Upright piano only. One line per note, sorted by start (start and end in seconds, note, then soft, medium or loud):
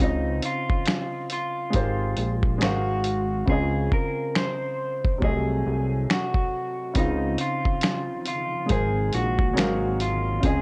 0.00 1.63 C#3 medium
0.00 1.64 C4 medium
0.00 1.65 F4 medium
0.00 1.66 D#5 medium
1.70 2.57 G#3 medium
1.70 2.60 G4 medium
1.70 2.59 A#4 medium
1.76 2.61 C5 medium
2.58 3.42 G#3 medium
2.58 3.43 F#4 medium
2.58 3.43 A#4 medium
2.63 3.44 C5 medium
2.63 3.45 F5 medium
3.46 5.11 C#3 medium
3.46 5.12 C4 medium
3.46 5.13 F4 medium
3.52 5.14 D#5 medium
5.18 6.84 C3 medium
5.18 6.85 F#3 medium
5.22 6.86 A3 medium
5.22 6.87 D#5 medium
6.94 8.59 C#3 medium
6.94 8.60 C4 medium
6.94 8.61 D#4 medium
7.00 8.62 F4 medium
8.66 9.52 G#3 medium
8.66 9.56 G#4 medium
8.66 9.55 A#4 medium
8.72 9.56 C5 medium
9.53 10.38 F#3 medium
9.53 10.37 G#3 medium
9.53 10.39 A#4 medium
9.58 10.39 C5 medium
9.58 10.40 F5 medium
10.40 10.62 C#3 medium
10.40 10.62 C4 medium
10.40 10.62 F4 medium
10.46 10.62 D#5 medium